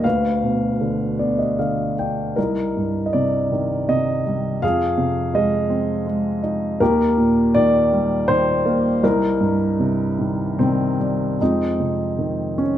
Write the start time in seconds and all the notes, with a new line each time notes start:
0.04 D2 B4 F5
0.43 B2
0.81 D3
1.19 B3 D5
1.39 D#5
1.59 D3 F5
1.99 D4 G5
2.36 C2 D#4 A#4
2.76 G2
3.06 D#5
3.13 C3 D5
3.52 D#3
3.89 C3 D#5
4.26 G3
4.62 F2 G#4 F5
4.98 C3
5.34 G#3 G#4 D#5
5.69 C4
6.06 G#3
6.43 D#4
6.80 D#2 G4 A#4
7.18 A#2
7.54 D#3 D5
7.93 G3
8.28 D#3 C5
8.66 A#3
9.04 C2 D#4 A#4
9.40 G2
9.79 C3
10.19 D#3
10.59 C3 D#3 G3 C4
10.99 G3
11.41 F2 G#3 C4 D#4
11.80 C3
12.19 D#3
12.58 C#4